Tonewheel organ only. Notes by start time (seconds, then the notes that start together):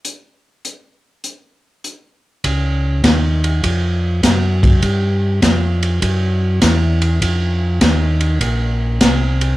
2.44 C#2
3.03 D#2
3.63 F2
4.23 F#2
4.83 G2
5.42 F2
6.02 F#2
6.62 E2
7.22 F2
7.81 D#2
8.41 A#1
9.01 C2